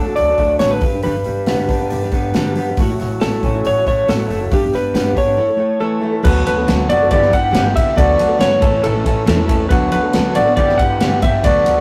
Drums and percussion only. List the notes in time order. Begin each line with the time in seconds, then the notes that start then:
0.16 open hi-hat
0.38 kick, open hi-hat
0.59 snare, open hi-hat
0.81 kick, open hi-hat
1.03 open hi-hat
1.24 open hi-hat
1.46 snare, open hi-hat
1.69 kick, open hi-hat
1.90 open hi-hat
2.12 kick, open hi-hat
2.34 snare, open hi-hat
2.55 open hi-hat
2.77 kick, open hi-hat
3.00 snare, open hi-hat
3.21 snare, open hi-hat
3.43 kick, open hi-hat
3.65 open hi-hat
3.87 kick, open hi-hat
4.08 snare, open hi-hat
4.30 open hi-hat
4.51 kick, open hi-hat
4.73 snare, open hi-hat
4.95 snare, open hi-hat
5.17 kick, open hi-hat
6.25 kick, crash
6.47 ride
6.68 snare, ride
6.90 ride
7.11 kick, ride
7.22 snare
7.33 kick, ride
7.54 snare, ride
7.76 kick, ride
7.98 kick, ride
8.19 ride
8.40 snare, ride
8.62 kick, ride
8.84 ride
9.06 kick, ride
9.27 snare, ride
9.49 kick, ride
9.70 kick, ride
9.92 ride
10.13 snare, ride
10.35 ride
10.57 kick, ride
10.69 snare
10.79 kick, ride
11.00 snare, ride
11.22 kick, ride
11.44 kick, ride
11.66 ride